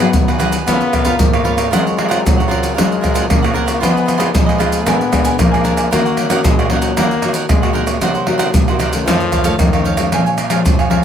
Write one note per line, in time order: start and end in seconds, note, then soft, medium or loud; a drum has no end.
0.00 0.12 G#2 medium
0.00 0.36 F#3 medium
0.00 0.40 B3 loud
0.00 0.37 B3 medium
0.00 0.37 D#4 medium
0.00 0.10 F#5 medium
0.13 0.65 D#3 medium
0.13 pandeiro medium
0.13 maracas medium
0.13 surdo loud
0.28 0.38 G#4 soft
0.28 0.39 B4 soft
0.28 0.39 F#5 medium
0.28 pandeiro soft
0.28 tamborim medium
0.28 maracas soft
0.39 0.56 F#3 medium
0.39 0.56 B3 medium
0.39 0.57 D#4 medium
0.39 0.65 F#4 medium
0.39 0.66 G#4 medium
0.39 0.66 B4 medium
0.39 0.66 F#5 medium
0.39 pandeiro medium
0.39 tamborim medium
0.39 maracas medium
0.52 pandeiro medium
0.52 maracas medium
0.66 1.18 C#3 medium
0.66 1.21 B3 loud
0.66 1.03 B3 medium
0.66 0.92 F4 medium
0.66 1.03 F4 soft
0.66 1.03 A#4 medium
0.66 0.93 B4 medium
0.66 0.93 C#5 medium
0.66 0.93 F5 medium
0.66 pandeiro medium
0.66 tamborim medium
0.66 maracas medium
0.66 surdo medium
0.81 pandeiro soft
0.81 maracas soft
0.93 1.03 F4 medium
0.93 1.04 B4 medium
0.93 1.05 C#5 medium
0.93 1.05 F5 medium
0.93 pandeiro medium
0.93 tamborim medium
0.93 maracas medium
0.93 surdo medium
1.05 1.42 B3 medium
1.05 1.15 F4 medium
1.05 1.42 F4 medium
1.05 1.42 A#4 medium
1.05 1.15 B4 medium
1.05 1.15 C#5 medium
1.05 1.16 F5 medium
1.05 pandeiro medium
1.05 maracas medium
1.19 1.70 G#2 medium
1.19 1.74 A#3 medium
1.19 pandeiro medium
1.19 tamborim medium
1.19 maracas medium
1.19 surdo medium
1.33 1.43 B4 soft
1.33 1.44 C#5 soft
1.33 1.44 F5 medium
1.33 pandeiro soft
1.33 tamborim medium
1.33 maracas soft
1.44 1.61 B3 medium
1.44 1.57 F4 medium
1.44 1.62 F4 medium
1.44 1.62 A#4 medium
1.44 1.57 B4 medium
1.44 1.56 C#5 medium
1.44 1.55 F5 medium
1.44 pandeiro medium
1.56 1.71 B4 soft
1.56 1.70 C#5 soft
1.56 1.70 F5 soft
1.56 pandeiro medium
1.56 tamborim medium
1.56 maracas medium
1.71 2.22 F#3 medium
1.71 2.27 G#3 medium
1.71 2.07 C4 medium
1.71 1.84 F4 medium
1.71 2.08 F4 medium
1.71 1.84 A#4 medium
1.71 2.08 A#4 medium
1.71 1.85 C#5 medium
1.71 1.84 F#5 medium
1.71 pandeiro medium
1.71 tamborim medium
1.71 maracas medium
1.71 surdo medium
1.85 1.96 A#4 soft
1.85 1.97 C#5 soft
1.85 1.97 F#5 soft
1.85 pandeiro soft
1.85 maracas soft
1.97 2.07 F4 soft
1.97 2.07 A#4 medium
1.97 2.07 C#5 medium
1.97 2.08 F#5 medium
1.97 pandeiro medium
1.97 tamborim medium
2.08 2.46 C4 medium
2.08 2.19 F4 medium
2.08 2.47 F4 medium
2.08 2.19 A#4 medium
2.08 2.47 A#4 medium
2.08 2.19 C#5 medium
2.08 2.20 F#5 medium
2.08 pandeiro medium
2.08 tamborim medium
2.08 maracas medium
2.25 2.75 C#3 medium
2.25 2.78 F#3 medium
2.25 pandeiro medium
2.25 maracas medium
2.25 surdo loud
2.37 2.47 A#4 soft
2.37 2.48 C#5 soft
2.37 2.48 F#5 medium
2.37 pandeiro soft
2.37 tamborim medium
2.37 maracas soft
2.48 2.99 C4 medium
2.48 2.73 F4 medium
2.48 2.99 F4 medium
2.48 2.74 A#4 medium
2.48 3.00 A#4 medium
2.48 2.75 C#5 medium
2.48 2.75 F#5 medium
2.48 pandeiro medium
2.48 tamborim medium
2.63 pandeiro medium
2.63 maracas medium
2.74 3.27 F#3 medium
2.74 3.29 G#3 loud
2.74 2.99 F4 medium
2.74 3.00 A#4 medium
2.74 3.01 C#5 medium
2.74 3.01 F#5 medium
2.74 pandeiro medium
2.74 tamborim medium
2.74 maracas medium
2.74 surdo medium
2.92 pandeiro soft
2.92 maracas soft
3.01 3.28 C4 medium
3.01 3.13 F4 soft
3.01 3.28 F4 medium
3.01 3.13 A#4 medium
3.01 3.29 A#4 medium
3.01 3.13 C#5 medium
3.01 3.14 F#5 medium
3.01 pandeiro medium
3.01 tamborim medium
3.01 maracas medium
3.01 surdo medium
3.14 3.24 F4 medium
3.14 3.25 A#4 medium
3.14 3.25 C#5 medium
3.14 3.25 F#5 medium
3.14 pandeiro medium
3.14 maracas medium
3.29 3.79 C#3 medium
3.29 3.79 A#3 medium
3.29 pandeiro medium
3.29 tamborim medium
3.29 maracas medium
3.29 surdo medium
3.42 3.78 C4 medium
3.42 3.78 F4 medium
3.42 3.78 A#4 medium
3.42 3.53 A#4 soft
3.42 3.54 C#5 soft
3.42 3.55 F#5 medium
3.42 pandeiro soft
3.42 tamborim medium
3.42 maracas soft
3.53 3.67 F4 medium
3.53 3.67 A#4 medium
3.53 3.65 C#5 medium
3.53 3.65 F#5 medium
3.53 pandeiro medium
3.66 3.81 A#4 soft
3.66 3.80 C#5 soft
3.66 3.80 F#5 soft
3.66 pandeiro medium
3.66 tamborim medium
3.66 maracas medium
3.80 4.32 F3 medium
3.80 4.17 B3 medium
3.80 4.37 B3 loud
3.80 4.17 D#4 medium
3.80 3.93 F4 medium
3.80 3.94 G#4 medium
3.80 4.17 G#4 medium
3.80 3.93 B4 medium
3.80 3.92 D#5 medium
3.80 pandeiro medium
3.80 tamborim medium
3.80 maracas medium
3.80 surdo medium
3.93 4.05 G#4 soft
3.93 4.06 B4 soft
3.93 4.06 D#5 medium
3.93 pandeiro soft
3.93 maracas soft
4.06 4.16 F4 soft
4.06 4.16 G#4 medium
4.06 4.17 B4 soft
4.06 4.17 D#5 medium
4.06 pandeiro medium
4.06 tamborim medium
4.06 maracas medium
4.18 4.56 B3 medium
4.18 4.56 D#4 medium
4.18 4.29 F4 medium
4.18 4.29 G#4 medium
4.18 4.56 G#4 medium
4.18 4.29 B4 medium
4.18 4.29 D#5 medium
4.18 pandeiro medium
4.18 tamborim medium
4.18 maracas medium
4.35 4.85 F3 medium
4.35 4.89 G#3 medium
4.35 pandeiro medium
4.35 maracas medium
4.35 surdo loud
4.46 4.58 G#4 soft
4.46 4.59 B4 soft
4.46 4.59 D#5 medium
4.46 pandeiro soft
4.46 tamborim medium
4.46 maracas soft
4.58 4.84 B3 medium
4.58 4.85 D#4 medium
4.58 4.85 F4 medium
4.58 4.85 G#4 medium
4.58 4.86 B4 medium
4.58 4.86 D#5 medium
4.58 pandeiro medium
4.58 tamborim medium
4.58 maracas medium
4.72 pandeiro medium
4.72 maracas medium
4.86 5.36 A#2 medium
4.86 5.09 G#3 medium
4.86 5.09 B3 medium
4.86 5.39 B3 loud
4.86 5.10 D4 medium
4.86 5.09 D4 medium
4.86 5.11 A#4 medium
4.86 5.12 D5 medium
4.86 5.13 G#5 medium
4.86 pandeiro medium
4.86 tamborim medium
4.86 maracas medium
4.86 surdo medium
5.01 pandeiro soft
5.01 maracas soft
5.12 5.48 G#3 medium
5.12 5.48 B3 medium
5.12 5.23 D4 soft
5.12 5.48 D4 medium
5.12 5.24 A#4 medium
5.12 5.24 D5 medium
5.12 5.24 G#5 medium
5.12 pandeiro medium
5.12 tamborim medium
5.12 maracas medium
5.12 surdo medium
5.24 5.34 D4 medium
5.24 5.35 A#4 medium
5.24 5.35 D5 medium
5.24 5.35 G#5 medium
5.24 pandeiro medium
5.24 maracas medium
5.39 5.90 F3 medium
5.39 5.88 A#3 medium
5.39 pandeiro medium
5.39 tamborim medium
5.39 maracas medium
5.39 surdo medium
5.51 5.89 G#3 medium
5.51 5.89 D4 medium
5.51 5.63 A#4 soft
5.51 5.64 D5 soft
5.51 5.64 G#5 medium
5.51 pandeiro soft
5.51 tamborim medium
5.51 maracas soft
5.64 5.77 D4 medium
5.64 5.77 A#4 medium
5.64 5.77 D5 medium
5.64 5.75 G#5 medium
5.64 pandeiro medium
5.64 maracas medium
5.77 5.90 A#4 soft
5.77 5.91 D5 soft
5.77 5.90 G#5 soft
5.77 pandeiro medium
5.77 tamborim medium
5.77 maracas medium
5.91 6.42 D#3 medium
5.91 6.27 A#3 medium
5.91 6.46 A#3 medium
5.91 6.27 C#4 medium
5.91 6.04 D#4 medium
5.91 6.28 F#4 medium
5.91 6.04 A#4 medium
5.91 6.04 C#5 medium
5.91 6.04 F#5 medium
5.91 pandeiro medium
5.91 tamborim medium
5.91 maracas medium
5.91 surdo medium
6.05 6.16 A#4 soft
6.05 6.18 C#5 soft
6.05 6.17 F#5 medium
6.05 pandeiro soft
6.05 maracas soft
6.17 6.28 D#4 medium
6.17 6.29 A#4 medium
6.17 6.29 C#5 medium
6.17 6.30 F#5 medium
6.17 pandeiro medium
6.17 tamborim medium
6.17 maracas medium
6.30 6.66 A#3 medium
6.30 6.66 C#4 medium
6.30 6.40 D#4 medium
6.30 6.66 F#4 medium
6.30 6.40 A#4 medium
6.30 6.40 C#5 medium
6.30 6.40 F#5 medium
6.30 pandeiro medium
6.30 tamborim medium
6.30 maracas medium
6.44 6.95 A#2 medium
6.44 6.72 G#3 medium
6.44 pandeiro medium
6.44 maracas medium
6.44 surdo loud
6.59 6.70 A#4 soft
6.59 6.71 C#5 soft
6.59 6.71 F#5 medium
6.59 pandeiro soft
6.59 tamborim medium
6.59 maracas soft
6.70 6.96 F#3 medium
6.70 7.19 A#3 medium
6.70 7.19 C#4 medium
6.70 6.96 D#4 medium
6.70 7.20 F#4 medium
6.70 6.96 A#4 medium
6.70 6.97 C#5 medium
6.70 6.97 F#5 medium
6.70 pandeiro medium
6.70 tamborim medium
6.82 pandeiro medium
6.82 maracas medium
6.97 7.47 D#3 medium
6.97 7.35 A#3 loud
6.97 7.21 D#4 medium
6.97 7.21 A#4 medium
6.97 7.22 C#5 medium
6.97 7.23 F#5 medium
6.97 pandeiro medium
6.97 tamborim medium
6.97 maracas loud
6.97 surdo medium
7.11 pandeiro soft
7.11 maracas soft
7.22 7.48 A#3 medium
7.22 7.48 C#4 medium
7.22 7.33 D#4 medium
7.22 7.48 F#4 medium
7.22 7.34 A#4 medium
7.22 7.34 C#5 medium
7.22 7.34 F#5 medium
7.22 pandeiro medium
7.22 tamborim medium
7.22 maracas medium
7.34 7.45 D#4 medium
7.34 7.45 A#4 medium
7.34 7.45 C#5 medium
7.34 7.45 F#5 medium
7.34 pandeiro medium
7.34 maracas medium
7.49 7.99 A#2 medium
7.49 7.94 G#3 medium
7.49 pandeiro medium
7.49 tamborim medium
7.49 maracas medium
7.49 surdo loud
7.62 7.98 A#3 medium
7.62 7.98 C#4 medium
7.62 7.98 F#4 medium
7.62 7.73 A#4 soft
7.62 7.73 C#5 soft
7.62 7.74 F#5 medium
7.62 pandeiro soft
7.62 tamborim medium
7.62 maracas soft
7.73 7.87 D#4 medium
7.73 7.87 A#4 medium
7.73 7.86 C#5 medium
7.73 7.85 F#5 medium
7.73 pandeiro medium
7.86 8.01 A#4 soft
7.86 8.00 C#5 soft
7.86 8.00 F#5 soft
7.86 pandeiro medium
7.86 tamborim medium
7.86 maracas medium
7.94 8.03 G#3 medium
8.01 8.52 C3 medium
8.01 8.55 F#3 medium
8.01 8.24 A#3 medium
8.01 8.14 D#4 medium
8.01 8.24 D#4 medium
8.01 8.24 F#4 medium
8.01 8.14 A#4 medium
8.01 8.14 C5 medium
8.01 8.13 F#5 medium
8.01 pandeiro medium
8.01 tamborim medium
8.01 maracas medium
8.01 surdo medium
8.14 8.26 A#4 soft
8.14 8.26 C5 soft
8.14 8.27 F#5 medium
8.14 pandeiro soft
8.14 maracas soft
8.26 8.52 A#3 medium
8.26 8.36 D#4 soft
8.26 8.52 D#4 medium
8.26 8.53 F#4 medium
8.26 8.37 A#4 medium
8.26 8.38 C5 medium
8.26 8.38 F#5 medium
8.26 pandeiro medium
8.26 tamborim medium
8.38 8.49 D#4 medium
8.38 8.49 A#4 medium
8.38 8.49 C5 medium
8.38 8.49 F#5 medium
8.38 pandeiro medium
8.38 tamborim medium
8.38 maracas medium
8.54 9.04 C3 medium
8.54 8.80 F3 medium
8.54 pandeiro medium
8.54 maracas medium
8.54 surdo loud
8.68 8.91 A#3 medium
8.68 8.91 D#4 medium
8.68 8.91 F#4 medium
8.68 8.78 A#4 soft
8.68 8.79 C5 soft
8.68 8.79 F#5 soft
8.68 pandeiro soft
8.68 tamborim medium
8.68 maracas soft
8.79 9.05 D#4 medium
8.79 9.05 A#4 medium
8.79 9.06 C5 medium
8.79 9.06 F#5 medium
8.79 pandeiro medium
8.79 tamborim medium
8.79 maracas medium
8.93 9.42 D#3 medium
8.93 9.42 A3 medium
8.93 9.43 C#4 medium
8.93 pandeiro medium
8.93 maracas medium
9.06 9.58 F2 medium
9.06 9.55 F3 loud
9.06 9.30 D#4 medium
9.06 9.32 A4 medium
9.06 9.32 C#5 medium
9.06 9.32 F5 medium
9.06 pandeiro loud
9.06 tamborim medium
9.06 maracas medium
9.06 surdo medium
9.20 pandeiro soft
9.20 maracas soft
9.32 9.42 D#4 soft
9.32 9.43 A4 medium
9.32 9.43 C#5 medium
9.32 9.44 F5 medium
9.32 pandeiro medium
9.32 tamborim medium
9.32 maracas medium
9.32 surdo medium
9.44 9.68 D#3 medium
9.44 9.69 A3 medium
9.44 9.69 C#4 medium
9.44 9.54 D#4 medium
9.44 9.54 A4 medium
9.44 9.54 C#5 medium
9.44 9.55 F5 medium
9.44 pandeiro medium
9.44 maracas medium
9.59 10.11 F2 medium
9.59 10.08 D#3 medium
9.59 pandeiro medium
9.59 tamborim medium
9.59 maracas medium
9.59 surdo medium
9.73 9.96 D#3 medium
9.73 9.96 A3 medium
9.73 9.96 C#4 medium
9.73 9.84 A4 soft
9.73 9.84 C#5 soft
9.73 9.85 F5 medium
9.73 pandeiro soft
9.73 tamborim medium
9.73 maracas soft
9.84 9.97 D#4 medium
9.84 9.98 A4 medium
9.84 9.97 C#5 medium
9.84 9.96 F5 medium
9.84 pandeiro medium
9.97 10.34 F3 medium
9.97 10.34 G#3 medium
9.97 10.34 C#4 medium
9.97 10.11 A4 soft
9.97 10.10 C#5 soft
9.97 10.10 F5 soft
9.97 pandeiro medium
9.97 tamborim medium
9.97 maracas medium
10.12 10.63 A#2 medium
10.12 10.24 A#4 medium
10.12 10.25 C#5 medium
10.12 10.25 F5 medium
10.12 10.25 G#5 medium
10.12 pandeiro medium
10.12 tamborim medium
10.12 maracas medium
10.12 surdo medium
10.26 10.37 C#5 soft
10.26 10.38 F5 soft
10.26 10.38 G#5 soft
10.26 pandeiro soft
10.26 maracas soft
10.38 10.49 A#4 soft
10.38 10.50 C#5 soft
10.38 10.50 F5 medium
10.38 10.50 G#5 soft
10.38 pandeiro medium
10.38 tamborim medium
10.38 maracas medium
10.50 10.86 F3 medium
10.50 10.86 G#3 medium
10.50 10.86 C#4 medium
10.50 10.60 A#4 medium
10.50 10.60 C#5 medium
10.50 10.60 F5 medium
10.50 10.60 G#5 medium
10.50 pandeiro medium
10.50 tamborim medium
10.50 maracas medium
10.65 11.04 F2 medium
10.65 pandeiro medium
10.65 maracas medium
10.65 surdo medium
10.79 10.89 C#5 soft
10.79 10.90 F5 medium
10.79 10.90 G#5 soft
10.79 pandeiro soft
10.79 tamborim medium
10.79 maracas soft
10.90 11.04 F3 medium
10.90 11.04 G#3 medium
10.90 11.04 C#4 medium
10.90 11.04 A#4 medium
10.90 11.04 C#5 medium
10.90 11.04 F5 medium
10.90 11.04 G#5 medium
10.90 pandeiro medium
10.90 tamborim medium